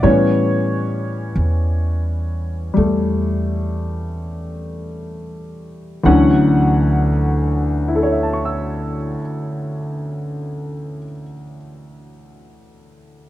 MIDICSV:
0, 0, Header, 1, 3, 480
1, 0, Start_track
1, 0, Key_signature, 2, "major"
1, 0, Tempo, 1312910
1, 16, Time_signature, 4, 2, 24, 8
1, 496, Tempo, 1418440
1, 976, Tempo, 1554404
1, 1456, Tempo, 1729107
1, 1936, Tempo, 1829268
1, 3835, End_track
2, 0, Start_track
2, 0, Title_t, "Grand piano"
2, 0, Program_c, 0, 0
2, 0, Control_c, 0, 64, 127
2, 10, Note_on_c, 0, 55, 38
2, 11, Note_on_c, 0, 52, 39
2, 11, Note_on_c, 0, 59, 40
2, 12, Note_on_c, 0, 73, 60
2, 17, Note_on_c, 0, 61, 44
2, 21, Control_c, 0, 64, 0
2, 89, Control_c, 0, 64, 127
2, 958, Note_off_c, 0, 55, 0
2, 963, Note_on_c, 0, 55, 37
2, 975, Note_on_c, 0, 57, 37
2, 1441, Note_off_c, 0, 73, 0
2, 1929, Note_on_c, 0, 38, 50
2, 1930, Note_off_c, 0, 52, 0
2, 1930, Note_off_c, 0, 55, 0
2, 1932, Note_on_c, 0, 50, 45
2, 1933, Note_off_c, 0, 59, 0
2, 1934, Note_off_c, 0, 61, 0
2, 1934, Note_on_c, 0, 52, 46
2, 1935, Note_off_c, 0, 57, 0
2, 1936, Note_on_c, 0, 78, 54
2, 1937, Note_on_c, 0, 54, 43
2, 1938, Note_on_c, 0, 61, 60
2, 1939, Control_c, 0, 64, 0
2, 1992, Control_c, 0, 64, 127
2, 2414, Note_on_c, 0, 64, 36
2, 2433, Note_on_c, 0, 69, 33
2, 2453, Note_on_c, 0, 73, 33
2, 2477, Note_on_c, 0, 76, 30
2, 2506, Note_on_c, 0, 81, 26
2, 2533, Note_on_c, 0, 85, 28
2, 2564, Note_on_c, 0, 88, 26
2, 2748, Note_off_c, 0, 78, 0
2, 2752, Note_off_c, 0, 38, 0
2, 2754, Note_off_c, 0, 50, 0
2, 2757, Note_off_c, 0, 52, 0
2, 2759, Note_off_c, 0, 54, 0
2, 2760, Note_off_c, 0, 61, 0
2, 3226, Note_off_c, 0, 64, 0
2, 3245, Note_off_c, 0, 69, 0
2, 3265, Note_off_c, 0, 73, 0
2, 3289, Note_off_c, 0, 76, 0
2, 3317, Note_off_c, 0, 81, 0
2, 3345, Note_off_c, 0, 85, 0
2, 3376, Note_off_c, 0, 88, 0
2, 3835, End_track
3, 0, Start_track
3, 0, Title_t, "Upright bass"
3, 0, Program_c, 1, 32
3, 13, Note_on_c, 1, 45, 65
3, 480, Note_off_c, 1, 45, 0
3, 496, Note_on_c, 1, 40, 62
3, 962, Note_off_c, 1, 40, 0
3, 973, Note_on_c, 1, 40, 58
3, 1923, Note_off_c, 1, 40, 0
3, 1934, Note_on_c, 1, 38, 65
3, 2746, Note_off_c, 1, 38, 0
3, 3835, End_track
0, 0, End_of_file